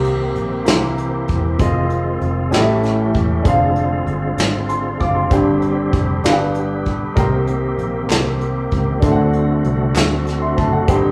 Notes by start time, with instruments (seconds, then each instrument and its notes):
Already playing: fingered electric bass C2, upright piano C3 A#3 D#4 G4 C5, tonewheel organ D#3 A#3 C4 G4
0.04 closed hi-hat
0.36 fingered electric bass A#1, closed hi-hat
0.65 fingered electric bass C2, upright piano C3 A#3 E4 G4 C5, tonewheel organ E3 C4, snare, closed hi-hat
0.98 closed hi-hat
1.28 fingered electric bass E1, kick, closed hi-hat
1.59 fingered electric bass F1, tonewheel organ D#3 G#3 C4 F4, upright piano C4 F4 G#4 D#5, kick, closed hi-hat
1.90 closed hi-hat
2.21 fingered electric bass F1, closed hi-hat
2.51 fingered electric bass A1, upright piano A2 C#4 G4 A4 D#5, tonewheel organ E3 A3 C#4 G4, snare, closed hi-hat
2.60 upright piano E5
2.83 snare, closed hi-hat
3.14 fingered electric bass E1, kick, closed hi-hat
3.43 fingered electric bass F1, tonewheel organ D3 G#3 C4 F4, upright piano D4 G#4 C5, kick, closed hi-hat
3.48 upright piano F5
3.76 closed hi-hat
4.06 fingered electric bass G1, closed hi-hat
4.38 fingered electric bass G#1, snare, closed hi-hat
4.69 upright piano C6, closed hi-hat
5.00 fingered electric bass F#1, upright piano F5 D6, kick, closed hi-hat
5.16 upright piano C6
5.30 fingered electric bass G1, upright piano G2 D4 G4 C5 G5, tonewheel organ G3 G4, kick, closed hi-hat
5.62 closed hi-hat
5.93 fingered electric bass F1, kick, closed hi-hat
6.23 fingered electric bass G1, upright piano G2 D4 G4 B4 F5, tonewheel organ B3, snare, closed hi-hat
6.33 upright piano G5
6.55 closed hi-hat
6.86 fingered electric bass B1, kick, closed hi-hat
7.14 fingered electric bass C2, upright piano C3 D#4 A#4 C5, tonewheel organ D#3 A#3 C4 G4, kick, closed hi-hat
7.20 upright piano G5
7.47 closed hi-hat
7.78 fingered electric bass A#1, closed hi-hat
8.09 fingered electric bass C2, snare, clap, closed hi-hat
8.41 closed hi-hat
8.71 fingered electric bass C#2, kick, closed hi-hat
9.00 fingered electric bass D2, upright piano D3 D4 A4 C5, tonewheel organ D3 A3 F#4, kick, closed hi-hat
9.05 upright piano E5
9.12 upright piano F#5
9.33 closed hi-hat
9.64 fingered electric bass C2, closed hi-hat
9.95 fingered electric bass D2, snare, clap, closed hi-hat
10.27 snare, closed hi-hat
10.42 upright piano E5 C6
10.57 fingered electric bass F#1, upright piano C5 A5, kick, closed hi-hat
10.73 upright piano A4 F#5
10.87 fingered electric bass G1, upright piano G2 D4 G4 C5 G5, tonewheel organ D#3 G3 C4 G4, kick, closed hi-hat
10.94 upright piano D#4